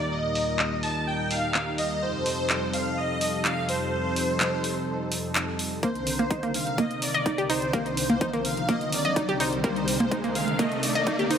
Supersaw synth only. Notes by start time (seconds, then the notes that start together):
Already playing: D5
0.12 D#5
0.83 A5
1.07 G5
1.31 F5
1.78 D#5
2.02 C5
2.74 F5
2.97 D#5
3.45 F5
3.69 C5
5.83 C5
6.55 F5
6.78 D#5
7.02 D5
7.50 C5
7.74 C5
8.45 F5
8.69 D#5
8.93 D5
9.40 C5
9.64 C5
10.35 F5
10.59 D#5
10.83 D5
11.31 C5